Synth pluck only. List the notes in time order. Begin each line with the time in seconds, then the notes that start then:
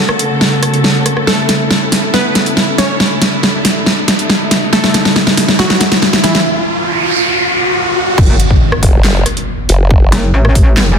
Already playing: F#4 F#5
1.27 A3 A4
2.14 B3 B4
2.78 C#4 C#5
4.73 A3 A4
5.59 F#3 F#4
6.24 E3 E4